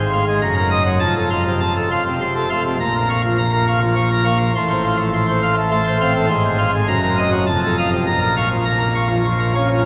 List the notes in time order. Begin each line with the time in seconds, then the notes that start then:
Already playing: G#1 G#2 C5
0.13 F5 C6
0.28 G#3
0.41 F#1 F#2 A#5
0.57 A#4
0.71 D#5 D#6
0.85 F#3
1.00 F1 F2 A5
1.16 A4
1.30 F5 C6
1.47 C3
1.60 A5
1.76 A4
1.91 F5 C6
2.06 C3
2.21 C3 C6
2.36 A4
2.50 A3 F5 C6
2.65 C3
2.80 A#1 A#2 A#5
2.95 A#4
3.09 F5 C#6
3.25 F3
3.38 A#5
3.52 A#4
3.68 F5 C#6
3.82 F3
3.96 F3 C#6
4.11 A#4
4.25 A#3 F5 C#6
4.40 F3
4.55 A1 A2 C6
4.70 C5
4.84 F5 C6
4.99 A3
5.14 C6
5.28 C5
5.43 F5 C6
5.58 A3
5.71 A3 C6
5.87 C5
6.01 C4 F5 C6
6.16 A3
6.30 G#1 G#2 C6
6.45 C5
6.58 F5 C6
6.74 G#3
6.88 F#1 F#2 A#5
7.03 A#4
7.17 D#5 D#6
7.32 F#3
7.47 F1 F2 A5
7.63 A4
7.78 F5 D#6
7.92 C3
8.06 A#1 A#2 A#5
8.21 A#4
8.36 F5 C#6
8.50 F3
8.65 A#5
8.79 A#4
8.95 F5 C#6
9.10 F3
9.25 F3 C#6
9.40 A#4
9.55 C#4 F5 C#6
9.70 F3